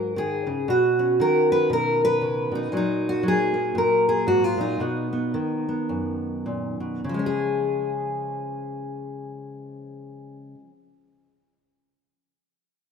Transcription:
steel-string acoustic guitar
Already playing: G#2 F#3 A#4
0.16 D#3 G#4
0.47 C#3
0.68 B2 F#4
0.99 C#4
1.20 D#3 A#4
1.52 B4
1.70 B2 A#4
2.05 B4
2.21 C#3
2.52 B2 D#4
2.72 A#2 F#3 A#3
2.77 D#4
3.09 F#4
3.23 F#3
3.28 G#4
3.54 A#3
3.75 A#2 A#4
4.09 G#4
4.27 G#2 F#4
4.44 F4
4.57 A#2 D#4
4.80 B2 B3
5.13 B3
5.34 D#3
5.69 B3
5.89 F#2
6.46 A#2
6.80 B2
7.04 C#3
7.09 F3
7.14 G#3
7.19 C#4
7.26 G#4

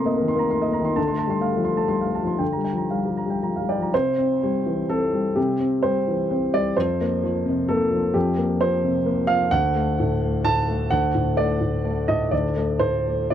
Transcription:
grand piano
Already playing: C3 A3 A#3 A#5 C6
0.05 A#3 D#5
0.17 A#4
0.21 D#3
0.28 C6
0.35 A#3 A#5
0.50 A3 C6
0.62 A#3 D#5
0.73 A#5
0.80 D#3
0.85 C6
0.96 D3 A5
1.08 C6
1.12 A3
1.18 A5
1.27 G3 C6
1.41 A3 F5
1.52 A4
1.57 F3
1.64 C6
1.72 A3
1.77 A5
1.88 G3 C6
2.01 F5
2.05 A3
2.15 A5
2.23 F3
2.27 C6
2.39 D3 G5
2.53 A#5
2.57 G3
2.64 G5
2.73 F3
2.78 A#5
2.91 G3 F5
3.04 F3 G4
3.17 A#5
3.26 G3 G5
3.43 F3 A#5
3.56 F5
3.61 G3
3.69 D5 G5
3.78 F3 A#5
3.94 C3 C5
4.18 C4
4.43 G3
4.66 E3
4.89 C4 A4
5.13 G3
5.36 C3 G4
5.60 C4
5.83 G3 C5
6.08 E3
6.31 C4
6.54 G3 D5
6.77 F2 C5
7.01 A#3
7.23 F3
7.46 C3
7.69 A#3 A4
7.91 F3
8.14 F2 G4
8.37 A#3
8.61 F3 C5
8.84 C3
9.05 A#3
9.27 F3 F5
9.51 D2 F#5
9.75 A3
10.00 A2
10.22 A3
10.45 A2 A5
10.68 A3
10.90 D2 F#5
11.15 A2
11.37 A3 D5
11.61 A2
11.84 A3
12.08 A2 D#5
12.31 D2 D5
12.56 A3
12.79 A2 C5
13.05 A3
13.30 D5

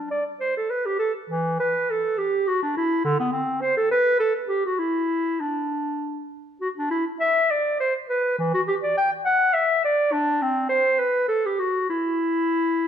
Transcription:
clarinet
0.11 D5
0.40 C5
0.57 A4
0.70 B4
0.86 G4
0.99 A4
1.30 E3
1.60 B4
1.90 A4
2.18 G4
2.47 F#4
2.63 D4
2.77 E4
3.05 D3
3.19 B3
3.32 C4
3.61 C5
3.77 A4
3.91 B4
4.20 A4
4.48 G4
4.65 F#4
4.79 E4
5.40 D4
6.61 F#4
6.78 D4
6.91 E4
7.20 E5
7.51 D5
7.80 C5
8.09 B4
8.38 E3
8.54 F#4
8.68 G4
8.83 D5
8.97 G5
9.25 F#5
9.53 E5
9.84 D5
10.12 D4
10.42 C4
10.69 C5
10.99 B4
11.28 A4
11.46 G4
11.59 F#4
11.89 E4

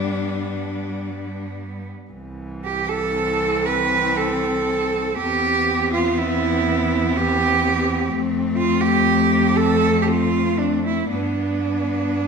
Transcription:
cello
Already playing: G2 G3 B3 D4
2.11 C2 E3
2.64 G4
2.89 A4
3.13 C4
3.65 B4
4.17 A4
5.16 E2 B3 C4 G4
5.93 F4
6.18 E4
7.17 G4
8.10 F2 A3
8.57 F4
8.81 G4
9.56 A4
10.02 G4
10.08 F4
10.59 D4
10.86 E4
11.11 G2 B3 D4

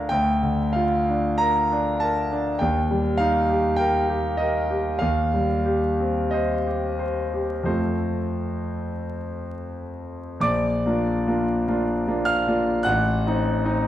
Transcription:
grand piano
Already playing: D4 F4 A#4 F5
0.09 D2 G5
0.43 D3
0.73 F4 F5
1.09 D4
1.38 A#4 A#5
1.72 D4
2.00 A#4 A5
2.32 D4
2.59 D#2 G5
2.91 G3
3.18 D#4 F5
3.50 G4
3.76 A#4 G5
4.09 G4
4.37 A#4 D#5
4.71 G4
4.99 D#2 F5
5.34 G3
5.66 G4
6.00 C4
6.31 C5 D#5
6.67 G4
6.99 C5
7.34 G4
7.63 F2 A3 C4 F4 C5
10.40 A#1 D5 D6
10.86 A#3 D4 F4
11.27 A#3 D4 F4
11.68 A#3 D4 F4
12.07 A#3 D4 F4
12.25 F5 F6
12.48 A#3 D4 F4
12.83 A1 F#5 F#6
13.26 C4 D#4
13.65 C4 D#4

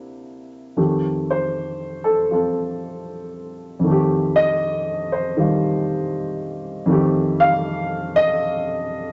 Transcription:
upright piano
Already playing: C3 A#3 D4 E4 E5
0.77 F2 D#3 A3 G4
1.30 C5
2.04 A4
2.31 F3 C4 A4
3.79 F2
3.84 D#3 A3
3.91 G4
4.36 D#5
5.12 C5
5.37 D#3 G3 F4
6.86 F2 D#3 A3
6.91 G4
7.40 F5
8.16 D#5

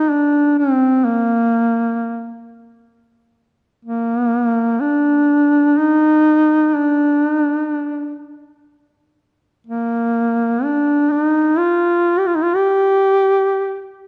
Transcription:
duduk
Already playing: D#4
0.10 D4
0.58 C4
1.05 A#3
3.85 A#3
4.80 D4
5.78 D#4
6.75 D4
9.67 A#3
10.63 D4
11.11 D#4
11.58 F4
12.19 G4
12.26 F4
12.35 D#4
12.43 F4
12.54 G4

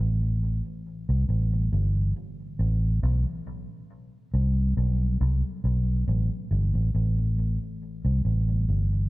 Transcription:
fingered electric bass
0.00 A1
1.09 C2
1.29 A1
1.73 G1
2.59 A1
3.03 B1
4.34 C2
4.77 B1
5.21 C2
5.64 B1
6.08 A1
6.51 G1
6.74 A1
6.95 A1
8.05 C2
8.25 A1
8.68 G1

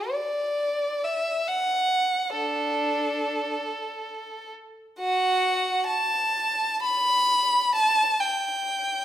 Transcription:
violin
Already playing: F#4
0.11 D5
1.04 E5
1.48 F#5
2.34 D4 A4
4.99 F#4 F#5
5.86 A5
6.82 B5
7.74 A5
8.20 G5

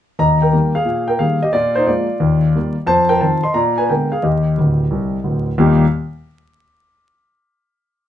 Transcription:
grand piano
0.19 D#2 D#5 A#5
0.42 A#4 G5
0.53 D#3 G3 A#3
0.75 G#4 F5
0.85 A#2
1.08 A#4 G5
1.19 D#3 G3 A#3 G#4 F5
1.43 G4 D#5
1.53 A#2 F4 D5
1.75 D#4 C5
1.86 F3 G#3 A#3 F4 D5
2.20 D#2
2.55 D#3 G3 A#3
2.87 F2 C5 A5
3.09 A#4 G5
3.21 D#3 F3 C4 C5 A5
3.43 D#5 C6
3.54 A#2 D5 A#5
3.78 B4 G#5
3.89 D3 G#3 B3 A#4 G5
4.12 G#4 F5
4.23 D#2 G4 D#5
4.57 D1 D2
4.91 C2
5.24 D1 D2
5.58 D#2 A#2 G3 A#3 D#4 G4

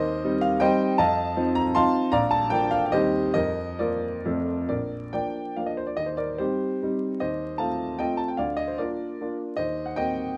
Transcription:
grand piano
Already playing: D#2 A#4 C5 D#5
0.24 G3 C4 D#4
0.41 F5
0.60 G3 C4 D#4 C5 D#5 G5
0.98 F2 D#5 F5 A5
1.36 F3 C4 D#4
1.55 A#5
1.75 F3 C4 D#4 F5 A5 C6
2.12 A#1 D5 F5 A#5
2.31 A5
2.50 F3 A#3 D4 G5
2.71 F5
2.86 F5
2.92 D#2 G3 C4 D#4 G4 C5 D#5
3.34 F2 A#4 D#5
3.79 F3 A#3 F4 A#4 D5
4.25 F2 F3 A3 C4
4.69 A#1 A#4 D5
5.13 F3 A#3 D4 D5 G5
5.56 F3 A#3 D4 F5
5.66 D#5
5.77 C5
5.87 D5
5.97 D#2 D#5
6.06 C5
6.17 A#4 D5
6.38 G3 C4 D#4 G4 C5
6.82 G3 C4 D#4
7.20 D#2 C5 D#5
7.58 A3 C4 F4 F5 A5
7.99 A3 C4 F4 D#5 G5
8.17 A5
8.28 G5
8.37 D2 D5 F5
8.57 D#5
8.68 C5
8.78 A#3 D4 F4 A#4 D5
9.21 A#3 D4 F4
9.57 D#2 C5 D#5
9.86 F#5
9.96 A#3 C4 F#4 D#5 G5

